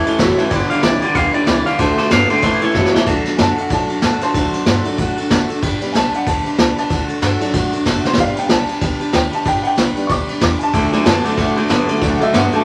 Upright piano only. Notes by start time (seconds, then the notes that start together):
0.05 C#5 E5 A5
0.18 C#5 E5 A5
0.37 C#5 E5 A5
0.50 D5 G5 B5
0.69 D5 G5 B5
0.84 G5 B5
1.01 D5 G5 B5
1.14 D5 G5 B5
1.33 D5 G5
1.47 D5 G5 B5
1.66 D5 G5 B5
1.79 D5 F#5 A5
1.99 A5
2.11 D5 A5
2.30 D5 F#5 A5
2.42 C#5 E5 A5
2.61 C#5 E5 A5
2.75 C#5 E5 A5
2.94 C#5 E5 A5
3.06 F#3 A3 D4
3.37 G#5
3.42 A5
3.61 F#5
3.71 F#3 A3 D4 A5
4.05 A5
4.23 C5 A5
4.33 F#3 A3 D4
4.85 F#3 A3 D4
5.81 G3 B3 D4
5.92 G#5
5.97 A5
6.15 F#5
6.28 A5
6.60 A5
6.79 A5
7.40 F#3 A3 D4
8.07 C5
8.18 G3 B3 D4 F5
8.39 G5
8.47 G#5
8.52 A5
8.81 G3 B3 D4
9.15 G5
9.35 A5
9.48 G5
9.63 F#5
9.67 G5
9.96 G3 B3 D4
10.07 C#6
10.12 D6
10.43 D6
10.59 G#5
10.63 A5
10.93 F#3 A3 D4
11.04 G#5
11.08 A5
11.70 F#3 A3 D4
12.01 F#3 A3 D4
12.23 E5
12.36 F#5
12.55 A5